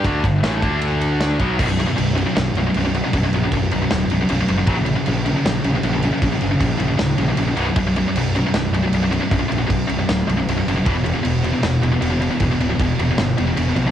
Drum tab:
CC |--------|xxxxxxxx|xxxxxxxx|xxxxxxxx|
RD |xxxxxxxx|--------|--------|--------|
SD |--o---o-|----o---|----o---|----o---|
BD |oo-o---o|o-------|o-o-----|o-------|

CC |xxxxxxxx|xxxxxxxx|xxxxxxxx|xxxxxxxx|
RD |--------|--------|--------|--------|
SD |----o---|----o---|----o---|----o---|
BD |o-o-----|o-------|o-o-----|o-------|

CC |xxxxxxxx|
RD |--------|
SD |----o---|
BD |o-o-----|